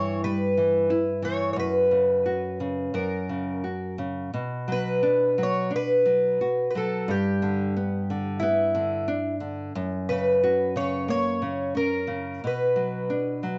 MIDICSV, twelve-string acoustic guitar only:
0, 0, Header, 1, 2, 480
1, 0, Start_track
1, 0, Key_signature, 2, "minor"
1, 0, Tempo, 671141
1, 1124, Time_signature, 4, 2, 24, 8
1, 1606, Tempo, 688863
1, 4966, Tempo, 665927
1, 7846, Tempo, 677966
1, 9631, End_track
2, 0, Start_track
2, 0, Title_t, "Twelve-string acoustic guitar"
2, 0, Program_c, 0, 25
2, 0, Note_on_c, 0, 73, 93
2, 169, Note_off_c, 0, 73, 0
2, 172, Note_on_c, 0, 71, 90
2, 860, Note_off_c, 0, 71, 0
2, 893, Note_on_c, 0, 73, 82
2, 1085, Note_off_c, 0, 73, 0
2, 1095, Note_on_c, 0, 73, 64
2, 1134, Note_off_c, 0, 73, 0
2, 1141, Note_on_c, 0, 71, 90
2, 2090, Note_off_c, 0, 71, 0
2, 2093, Note_on_c, 0, 70, 69
2, 2792, Note_off_c, 0, 70, 0
2, 3331, Note_on_c, 0, 71, 90
2, 3808, Note_off_c, 0, 71, 0
2, 3826, Note_on_c, 0, 73, 84
2, 4045, Note_off_c, 0, 73, 0
2, 4053, Note_on_c, 0, 71, 95
2, 4705, Note_off_c, 0, 71, 0
2, 4713, Note_on_c, 0, 71, 60
2, 4745, Note_off_c, 0, 71, 0
2, 4761, Note_on_c, 0, 69, 76
2, 4990, Note_off_c, 0, 69, 0
2, 4993, Note_on_c, 0, 67, 77
2, 5923, Note_on_c, 0, 64, 78
2, 5969, Note_off_c, 0, 67, 0
2, 6610, Note_off_c, 0, 64, 0
2, 7144, Note_on_c, 0, 71, 84
2, 7629, Note_off_c, 0, 71, 0
2, 7635, Note_on_c, 0, 73, 86
2, 7866, Note_off_c, 0, 73, 0
2, 7874, Note_on_c, 0, 73, 100
2, 8342, Note_off_c, 0, 73, 0
2, 8345, Note_on_c, 0, 70, 82
2, 8828, Note_off_c, 0, 70, 0
2, 8842, Note_on_c, 0, 71, 66
2, 9631, Note_off_c, 0, 71, 0
2, 9631, End_track
0, 0, End_of_file